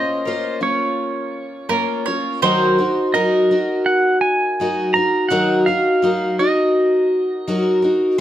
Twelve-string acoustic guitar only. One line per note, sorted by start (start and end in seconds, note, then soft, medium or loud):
0.00 0.24 A#3 soft
0.00 0.25 C#4 soft
0.00 0.25 F4 soft
0.00 0.24 C5 soft
0.25 0.61 A#3 medium
0.25 0.60 C#4 medium
0.25 0.59 F4 medium
0.25 0.62 C5 medium
0.61 1.68 A#3 soft
0.61 1.69 C#4 soft
0.61 1.69 F4 medium
1.69 2.05 A#3 medium
1.69 2.06 C#4 medium
1.69 2.06 F4 medium
2.08 2.42 A#3 soft
2.08 2.43 C#4 soft
2.08 2.43 F4 soft
2.42 2.78 D#3 medium
2.42 2.78 F#3 medium
2.42 2.79 D#4 medium
2.42 2.78 F#4 medium
2.42 2.77 A#4 medium
2.78 3.13 D#4 soft
2.78 3.14 F#4 soft
2.78 3.14 A#4 medium
3.14 3.50 F#3 medium
3.14 3.51 D#4 medium
3.14 3.50 F#4 medium
3.14 3.50 A#4 medium
3.51 4.60 D#4 soft
3.51 4.60 F#4 soft
3.51 4.59 A#4 medium
4.60 4.96 F#3 medium
4.60 4.96 D#4 medium
4.60 4.95 F#4 medium
4.60 4.94 A#4 medium
4.95 5.30 D#4 soft
4.95 5.30 F#4 soft
4.95 5.31 A#4 medium
5.30 5.67 D#3 medium
5.30 5.67 F#3 medium
5.30 5.67 D#4 medium
5.30 5.67 F#4 medium
5.30 5.66 A#4 medium
5.67 6.02 D#4 soft
5.67 6.02 F#4 soft
5.67 6.03 A#4 medium
6.02 6.39 F#3 medium
6.02 6.39 D#4 medium
6.02 6.39 F#4 medium
6.02 6.38 A#4 medium
6.39 7.46 D#4 soft
6.39 7.47 F#4 medium
6.39 7.48 A#4 medium
7.48 7.84 F#3 medium
7.48 7.83 D#4 medium
7.48 7.83 F#4 medium
7.48 7.81 A#4 medium
7.82 8.18 D#4 soft
7.82 8.19 F#4 soft
7.82 8.19 A#4 medium